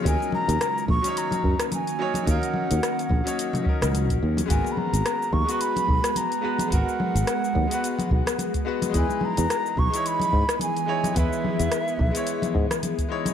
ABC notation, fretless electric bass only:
X:1
M:4/4
L:1/16
Q:"Swing 16ths" 1/4=108
K:G#m
V:1 name="Fretless electric bass" clef=bass
D,, z2 D,, z2 A,,, z3 F,, z4 z | D,, z2 D,, z2 A,,, z4 C,,2 A,,, D,, z | G,,, z2 G,,, z2 D,, z3 B,,, z4 z | G,,, z2 G,,, z2 D,, z3 B,,, z4 z |
E,, z2 E,, z2 B,,, z3 G,, z4 z | E,, z2 E,, z2 B,,, z3 G,, z4 z |]